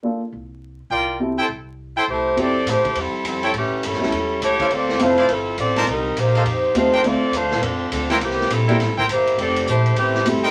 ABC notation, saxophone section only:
X:1
M:4/4
L:1/8
Q:"Swing" 1/4=205
K:F
V:1 name="Saxophone section"
z8 | z6 [A,EGc]2 | [CGAd]2 [A,EGc]2 [G,CEA]2 [G,CEA]2 | [E,A,^CG]2 [G,CEA]4 [A,EG^c]2 |
[CFAd]2 [A,EFc]2 [F,CEA]2 [CFAd]2 | [G,C_EB]2 [B,EGc]4 [A,EFc]2 | [CFAd]2 [A,DFc]2 [F,CDA]2 [F,CDA]2 | [E,B,CG]2 [G,CEA]4 [B,EGc]2 |
[CGAd]2 [A,EGc]2 [E,A,CG]2 [G,CEA]2 |]